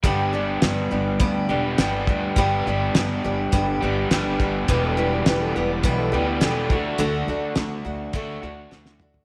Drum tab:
HH |x---x---x---x---|x---x---x---x---|x---x---x---x---|x---x---x-------|
SD |----o-------o---|----o-------o---|----o-------o---|----o-------oo--|
T2 |----------------|----------------|----------------|--------------o-|
FT |----------------|----------------|----------------|---------------o|
BD |o-------o-----o-|o-------o-----o-|o-------o-----o-|--------o-------|